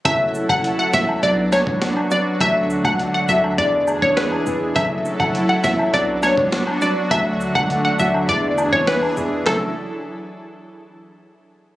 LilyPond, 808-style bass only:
\new Staff \with { instrumentName = "808-style bass" } { \clef bass \time 4/4 \key fis \minor \tempo 4 = 102 fis,,8. fis,,8 r16 a,,16 r16 b,,8. cis,16 r4 | d,8 r16 cis,8 r16 d,16 r16 e,8. e,8 r16 e,16 r16 | fis,,8. fis,,8 r16 a,,16 r16 b,,8. cis,16 r4 | d,8 r16 cis,8 r16 d,16 r16 e,8. e,8 r16 e,16 r16 |
fis,,8 r2. r8 | }